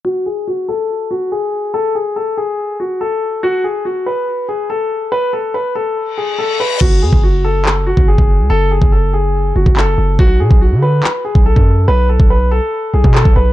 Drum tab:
CC |----------------|----------------|----------------|----------------|
CP |----------------|----------------|----------------|----------------|
BD |----------------|----------------|----------------|----------------|

CC |x---------------|----------------|----------------|----------------|
CP |--------x-------|------------x---|--------x-------|------------x---|
BD |o--o-------o-o--|---o-------o----|o--o-------o-o--|---o-------o-o--|